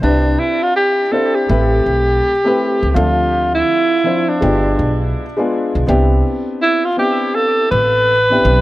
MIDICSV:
0, 0, Header, 1, 4, 480
1, 0, Start_track
1, 0, Key_signature, 0, "major"
1, 0, Tempo, 731707
1, 18, Time_signature, 4, 2, 24, 8
1, 5650, End_track
2, 0, Start_track
2, 0, Title_t, "Alto saxophone"
2, 0, Program_c, 0, 65
2, 21, Note_on_c, 0, 62, 92
2, 257, Note_on_c, 0, 64, 79
2, 267, Note_off_c, 0, 62, 0
2, 411, Note_on_c, 0, 65, 91
2, 421, Note_off_c, 0, 64, 0
2, 499, Note_off_c, 0, 65, 0
2, 502, Note_on_c, 0, 67, 95
2, 737, Note_on_c, 0, 69, 86
2, 747, Note_off_c, 0, 67, 0
2, 886, Note_on_c, 0, 67, 92
2, 896, Note_off_c, 0, 69, 0
2, 1907, Note_off_c, 0, 67, 0
2, 1907, Note_on_c, 0, 67, 60
2, 1933, Note_on_c, 0, 65, 92
2, 1943, Note_off_c, 0, 67, 0
2, 2323, Note_off_c, 0, 65, 0
2, 2327, Note_on_c, 0, 64, 93
2, 2813, Note_on_c, 0, 62, 75
2, 2823, Note_off_c, 0, 64, 0
2, 3291, Note_off_c, 0, 62, 0
2, 4344, Note_on_c, 0, 64, 91
2, 4493, Note_on_c, 0, 65, 88
2, 4503, Note_off_c, 0, 64, 0
2, 4580, Note_off_c, 0, 65, 0
2, 4585, Note_on_c, 0, 67, 90
2, 4823, Note_on_c, 0, 69, 102
2, 4833, Note_off_c, 0, 67, 0
2, 5055, Note_off_c, 0, 69, 0
2, 5059, Note_on_c, 0, 71, 106
2, 5650, Note_off_c, 0, 71, 0
2, 5650, End_track
3, 0, Start_track
3, 0, Title_t, "Upright piano"
3, 0, Program_c, 1, 0
3, 9, Note_on_c, 1, 60, 66
3, 13, Note_on_c, 1, 62, 67
3, 16, Note_on_c, 1, 64, 69
3, 21, Note_on_c, 1, 67, 62
3, 26, Note_on_c, 1, 71, 86
3, 666, Note_off_c, 1, 60, 0
3, 668, Note_off_c, 1, 62, 0
3, 669, Note_off_c, 1, 64, 0
3, 672, Note_off_c, 1, 67, 0
3, 674, Note_off_c, 1, 71, 0
3, 731, Note_on_c, 1, 60, 64
3, 737, Note_on_c, 1, 62, 64
3, 739, Note_on_c, 1, 64, 65
3, 745, Note_on_c, 1, 67, 60
3, 749, Note_on_c, 1, 72, 71
3, 967, Note_off_c, 1, 60, 0
3, 972, Note_off_c, 1, 64, 0
3, 972, Note_on_c, 1, 57, 72
3, 975, Note_off_c, 1, 67, 0
3, 977, Note_on_c, 1, 60, 70
3, 978, Note_off_c, 1, 62, 0
3, 982, Note_on_c, 1, 64, 67
3, 983, Note_off_c, 1, 72, 0
3, 985, Note_on_c, 1, 67, 63
3, 989, Note_on_c, 1, 71, 85
3, 1510, Note_off_c, 1, 57, 0
3, 1512, Note_off_c, 1, 60, 0
3, 1514, Note_off_c, 1, 64, 0
3, 1516, Note_off_c, 1, 67, 0
3, 1518, Note_off_c, 1, 71, 0
3, 1603, Note_on_c, 1, 57, 76
3, 1607, Note_on_c, 1, 60, 76
3, 1611, Note_on_c, 1, 64, 72
3, 1617, Note_on_c, 1, 67, 74
3, 1620, Note_on_c, 1, 71, 89
3, 1901, Note_off_c, 1, 57, 0
3, 1903, Note_off_c, 1, 60, 0
3, 1905, Note_off_c, 1, 64, 0
3, 1908, Note_off_c, 1, 67, 0
3, 1909, Note_off_c, 1, 71, 0
3, 1930, Note_on_c, 1, 53, 78
3, 1933, Note_on_c, 1, 60, 63
3, 1938, Note_on_c, 1, 62, 68
3, 1942, Note_on_c, 1, 76, 64
3, 1946, Note_on_c, 1, 69, 84
3, 2586, Note_off_c, 1, 53, 0
3, 2588, Note_off_c, 1, 60, 0
3, 2590, Note_off_c, 1, 62, 0
3, 2592, Note_off_c, 1, 76, 0
3, 2594, Note_off_c, 1, 69, 0
3, 2650, Note_on_c, 1, 53, 65
3, 2653, Note_on_c, 1, 60, 62
3, 2660, Note_on_c, 1, 62, 59
3, 2663, Note_on_c, 1, 64, 61
3, 2668, Note_on_c, 1, 72, 75
3, 2889, Note_off_c, 1, 62, 0
3, 2891, Note_on_c, 1, 56, 82
3, 2893, Note_on_c, 1, 59, 75
3, 2894, Note_off_c, 1, 53, 0
3, 2896, Note_off_c, 1, 60, 0
3, 2899, Note_on_c, 1, 62, 66
3, 2900, Note_off_c, 1, 64, 0
3, 2903, Note_off_c, 1, 72, 0
3, 2903, Note_on_c, 1, 65, 70
3, 2906, Note_on_c, 1, 67, 90
3, 3429, Note_off_c, 1, 56, 0
3, 3430, Note_off_c, 1, 59, 0
3, 3433, Note_off_c, 1, 62, 0
3, 3435, Note_off_c, 1, 65, 0
3, 3436, Note_off_c, 1, 67, 0
3, 3521, Note_on_c, 1, 56, 88
3, 3526, Note_on_c, 1, 59, 75
3, 3530, Note_on_c, 1, 62, 77
3, 3535, Note_on_c, 1, 65, 75
3, 3538, Note_on_c, 1, 68, 83
3, 3820, Note_off_c, 1, 56, 0
3, 3822, Note_off_c, 1, 59, 0
3, 3824, Note_off_c, 1, 62, 0
3, 3827, Note_off_c, 1, 65, 0
3, 3828, Note_off_c, 1, 68, 0
3, 3850, Note_on_c, 1, 59, 89
3, 3852, Note_on_c, 1, 60, 78
3, 3857, Note_on_c, 1, 62, 83
3, 3862, Note_on_c, 1, 64, 84
3, 3866, Note_on_c, 1, 67, 99
3, 4506, Note_off_c, 1, 59, 0
3, 4507, Note_off_c, 1, 60, 0
3, 4510, Note_off_c, 1, 62, 0
3, 4512, Note_off_c, 1, 64, 0
3, 4514, Note_off_c, 1, 67, 0
3, 4571, Note_on_c, 1, 59, 68
3, 4575, Note_on_c, 1, 60, 64
3, 4579, Note_on_c, 1, 62, 60
3, 4582, Note_on_c, 1, 64, 58
3, 4585, Note_on_c, 1, 67, 72
3, 5310, Note_off_c, 1, 59, 0
3, 5312, Note_off_c, 1, 60, 0
3, 5314, Note_off_c, 1, 62, 0
3, 5316, Note_off_c, 1, 64, 0
3, 5317, Note_off_c, 1, 67, 0
3, 5445, Note_on_c, 1, 59, 65
3, 5449, Note_on_c, 1, 60, 61
3, 5452, Note_on_c, 1, 62, 63
3, 5457, Note_on_c, 1, 64, 70
3, 5461, Note_on_c, 1, 67, 81
3, 5650, Note_off_c, 1, 59, 0
3, 5650, Note_off_c, 1, 60, 0
3, 5650, Note_off_c, 1, 62, 0
3, 5650, Note_off_c, 1, 64, 0
3, 5650, Note_off_c, 1, 67, 0
3, 5650, End_track
4, 0, Start_track
4, 0, Title_t, "Upright bass"
4, 0, Program_c, 2, 32
4, 20, Note_on_c, 2, 36, 97
4, 231, Note_off_c, 2, 36, 0
4, 981, Note_on_c, 2, 33, 95
4, 1191, Note_off_c, 2, 33, 0
4, 1222, Note_on_c, 2, 35, 78
4, 1432, Note_off_c, 2, 35, 0
4, 1855, Note_on_c, 2, 37, 81
4, 1931, Note_off_c, 2, 37, 0
4, 1944, Note_on_c, 2, 38, 107
4, 2365, Note_off_c, 2, 38, 0
4, 2901, Note_on_c, 2, 31, 92
4, 3111, Note_off_c, 2, 31, 0
4, 3142, Note_on_c, 2, 35, 83
4, 3352, Note_off_c, 2, 35, 0
4, 3773, Note_on_c, 2, 35, 80
4, 3850, Note_off_c, 2, 35, 0
4, 3861, Note_on_c, 2, 36, 98
4, 4071, Note_off_c, 2, 36, 0
4, 5062, Note_on_c, 2, 33, 84
4, 5484, Note_off_c, 2, 33, 0
4, 5543, Note_on_c, 2, 35, 97
4, 5650, Note_off_c, 2, 35, 0
4, 5650, End_track
0, 0, End_of_file